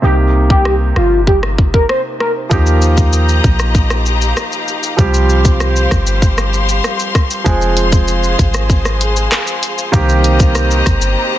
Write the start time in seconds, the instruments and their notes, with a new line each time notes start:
0.02 808-style bass C2, grand piano C3 A#3 D#4 G4, soft synth lead G4
0.50 soft synth lead G4, kick
0.65 cross-stick
0.96 808-style bass G1, soft synth lead F4, cross-stick
1.27 soft synth lead G4, kick
1.43 cross-stick
1.58 kick
1.74 soft synth lead A#4, kick
1.89 soft synth lead C5, cross-stick
2.20 soft synth lead A#4, cross-stick
2.49 808-style bass D#2, grand piano F3 A#3 D#4 G4, string section G4 D#5 F5 A#5, kick, shaker
2.66 shaker
2.82 shaker
2.97 kick, shaker
3.13 shaker
3.29 shaker
3.44 808-style bass A#1, kick, shaker
3.59 cross-stick, shaker
3.75 kick, shaker
3.90 cross-stick, shaker
4.06 shaker
4.21 shaker
4.37 cross-stick, shaker
4.52 shaker
4.68 shaker
4.83 shaker
4.97 808-style bass C2, grand piano F3 G3 C4 G4, string section G4 C5 C6, kick, shaker
5.14 shaker
5.29 shaker
5.45 kick, shaker
5.60 cross-stick, shaker
5.76 shaker
5.91 808-style bass G1, kick, cross-stick, shaker
6.07 shaker
6.22 kick, shaker
6.38 cross-stick, shaker
6.53 shaker
6.69 shaker
6.84 cross-stick, shaker
7.00 shaker
7.15 kick, cross-stick, shaker
7.31 shaker
7.44 808-style bass F1, grand piano F3 G#3 C4 G#4, string section G#4 C5, kick, shaker
7.61 shaker
7.77 closed hi-hat, shaker
7.92 kick, shaker
8.08 shaker
8.24 shaker
8.39 808-style bass G#1, kick, closed hi-hat, shaker
8.54 cross-stick, shaker
8.70 kick, shaker
8.85 cross-stick, shaker
9.01 closed hi-hat, shaker
9.16 shaker
9.32 cross-stick, clap, shaker
9.47 shaker
9.63 closed hi-hat, shaker
9.78 shaker
9.92 808-style bass C2, grand piano D#3 A#3 C4 G4, string section G4 C5 D#5 A#5, kick, shaker
10.09 shaker
10.24 closed hi-hat, shaker
10.40 kick, shaker
10.55 cross-stick, shaker
10.71 shaker
10.86 808-style bass G1, kick, cross-stick, closed hi-hat, shaker
11.02 shaker